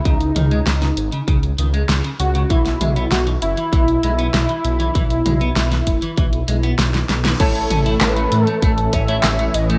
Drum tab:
CC |----------------|----------------|----------------|x---------------|
HH |xxxxxxxxxxxxxxxx|xxxxxxxxxxxxxxxx|xxxxxxxxxxxxxxxx|xxxxxxxxxxxxxxxx|
CP |----------------|----------------|----------------|----x-------x---|
SD |----oo------o---|-o--o-------o---|----oo------oooo|----o-------o---|
T2 |--o-------------|--o-------------|--o-------------|--o-------------|
BD |o-------o-------|o-------o-------|o-----o-o-------|o-------o-o-----|